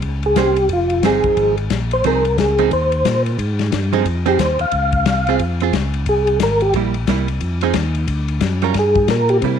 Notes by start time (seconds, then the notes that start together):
0.02 C#2, kick, ride
0.23 G#4, ride
0.36 C2 A#3 C#4 G4 G#4 C5, kick, snare, hi-hat pedal, ride
0.56 ride
0.69 F1, kick, ride
0.73 F4
0.90 ride
1.03 G1 F3 C4 D#4 G#4, kick, snare, hi-hat pedal, ride
1.24 G1, kick, ride
1.37 G#1, kick, ride
1.58 ride
1.70 A#1, kick, snare, hi-hat pedal, ride
1.91 C5, ride
2.04 C2 F3 C4 D#4 G#4 A#4, kick, ride
2.25 ride
2.38 C#2 G#4, kick, snare, hi-hat pedal, ride
2.58 F3 C4 D#4 G#4, ride
2.71 D#2 C5, kick, ride
2.92 ride
3.05 A#2, kick, snare, hi-hat pedal, ride
3.26 ride
3.38 G#2, kick, ride
3.59 snare, ride
3.72 G2, kick, snare, hi-hat pedal, ride
3.93 F3 C4 D#4 G#4, ride
4.05 F2, kick, ride
4.26 F3 C4 D#4 G4 G#4, ride
4.38 D#2 C5, kick, snare, hi-hat pedal, ride
4.59 D#2 F5, ride
4.72 C#2, kick, ride
4.92 kick, ride
5.06 C2, kick, snare, hi-hat pedal, ride
5.27 C4 F4 G#4, ride
5.39 F2, kick, ride
5.60 C4 F4 G#4, ride
5.73 C#2, kick, snare, hi-hat pedal, ride
5.94 ride
6.06 C2 G#4, kick, ride
6.27 ride
6.40 G#1 A#4, kick, snare, hi-hat pedal, ride
6.61 G4, ride
6.73 A#1 G3 A#3 E4, kick, ride
6.94 ride
7.07 C2 G3 A#3 E4, kick, snare, hi-hat pedal, ride
7.28 ride
7.41 F2, kick, ride
7.61 F3 C4 D#4 G#4, ride
7.74 D#2, kick, snare, hi-hat pedal, ride
7.95 ride
8.07 D2, kick, ride
8.28 ride
8.41 F#2, kick, snare, hi-hat pedal, ride
8.62 G3 C#4 F4 A#4, ride
8.74 G2, kick, snare, ride
8.79 G#4
8.95 kick, ride
9.08 A#2 A#4, kick, snare, hi-hat pedal, ride
9.29 G4, ride
9.42 C3 G3 A#3 E4, kick, ride